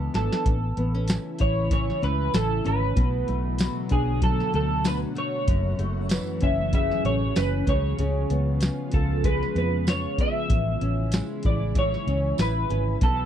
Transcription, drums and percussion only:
0.14 snare medium
0.14 closed hi-hat medium
0.32 snare medium
0.46 kick loud
0.46 closed hi-hat medium
0.77 closed hi-hat medium
1.08 snare loud
1.08 closed hi-hat medium
1.08 tambourine medium
1.39 kick medium
1.39 closed hi-hat medium
1.71 kick medium
1.71 closed hi-hat medium
1.90 snare soft
2.03 closed hi-hat medium
2.34 snare loud
2.34 closed hi-hat medium
2.34 tambourine medium
2.66 closed hi-hat medium
2.97 kick loud
2.97 closed hi-hat medium
3.28 closed hi-hat medium
3.58 snare loud
3.58 closed hi-hat medium
3.58 tambourine medium
3.89 kick medium
3.89 closed hi-hat medium
4.22 kick medium
4.22 closed hi-hat medium
4.40 snare soft
4.54 closed hi-hat medium
4.85 snare loud
4.85 closed hi-hat medium
4.85 tambourine medium
5.17 closed hi-hat medium
5.48 kick loud
5.48 closed hi-hat medium
5.79 closed hi-hat medium
6.09 snare loud
6.09 closed hi-hat medium
6.09 tambourine medium
6.41 kick medium
6.41 closed hi-hat medium
6.73 kick medium
6.73 closed hi-hat medium
6.91 snare soft
7.05 closed hi-hat medium
7.36 snare loud
7.36 closed hi-hat medium
7.36 tambourine medium
7.67 kick loud
7.67 closed hi-hat medium
7.99 closed hi-hat medium
8.30 closed hi-hat medium
8.61 snare loud
8.61 closed hi-hat medium
8.61 tambourine medium
8.92 kick loud
8.92 closed hi-hat medium
9.24 kick loud
9.24 closed hi-hat medium
9.43 snare soft
9.56 closed hi-hat medium
9.87 snare medium
9.87 closed hi-hat medium
9.87 tambourine medium
10.18 kick medium
10.18 closed hi-hat medium
10.50 kick loud
10.50 closed hi-hat medium
10.81 closed hi-hat medium
11.12 snare loud
11.12 closed hi-hat medium
11.12 tambourine medium
11.43 kick loud
11.43 closed hi-hat medium
11.75 kick medium
11.75 closed hi-hat medium
11.94 snare soft
12.08 closed hi-hat medium
12.38 snare loud
12.38 closed hi-hat medium
12.38 tambourine medium
12.70 closed hi-hat medium
13.01 kick loud
13.01 closed hi-hat medium

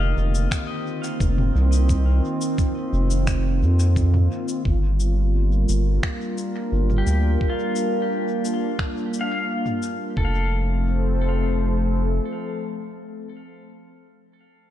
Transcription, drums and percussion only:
0.35 cabasa soft
0.51 finger snap medium
0.51 kick loud
0.51 cabasa soft
1.04 cabasa medium
1.20 kick loud
1.20 cabasa soft
1.38 mid tom medium
1.73 cabasa medium
1.89 kick loud
1.89 cabasa soft
2.41 cabasa medium
2.58 kick loud
2.58 cabasa soft
3.11 cabasa medium
3.27 finger snap medium
3.27 kick loud
3.27 cabasa soft
3.80 cabasa medium
3.96 kick loud
3.96 cabasa soft
4.14 mid tom medium
4.48 cabasa medium
4.65 kick loud
5.00 cabasa soft
5.69 cabasa medium
6.03 finger snap medium
6.03 kick loud
6.38 cabasa medium
6.90 mid tom medium
7.07 cabasa soft
7.41 kick loud
7.76 cabasa medium
8.45 cabasa medium
8.79 finger snap medium
8.79 kick medium
9.14 cabasa soft
9.66 mid tom medium
9.83 cabasa soft
10.17 kick loud

